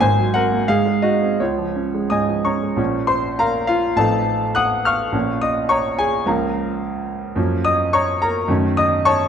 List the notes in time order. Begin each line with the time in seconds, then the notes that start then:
0.00 G#1 G#2 C5 G#5
0.19 F#3
0.34 C4 A#4 F#5
0.52 A#3
0.68 G#2 G#4 F5
0.86 G#3
1.02 D#4 F#4 D#5
1.22 C4
1.40 C#2 F4 C#5
1.58 F3
1.76 C#4
1.95 G#3
2.10 G#2 D#5 G#5 D#6
2.28 F3
2.45 C#4 C#5 A#5 C#6
2.63 G#3
2.76 A#1 F3 A#3 C#4
3.07 C5 C6
3.39 A#4 F5 A#5
3.67 F4 F5
3.96 A1 F3 C4 D#4 A4 F5 A5
4.55 F#5 D#6 F#6
4.85 F5 C#6 F6
5.12 A#1 F3 A#3 C#4
5.41 D#5 D#6
5.69 C#5 A#5 C#6
5.99 G#4 G#5
6.26 C#2 F3 A#3 C#4 A#4 F5 A#5
7.36 F#2 F3 A#3 C#4
7.65 D#5 D#6
7.93 C#5 A#5 C#6
8.22 A#4 A#5
8.48 F#2 D#3 A3 C#4
8.77 D#5 D#6
9.05 C#5 A5 C#6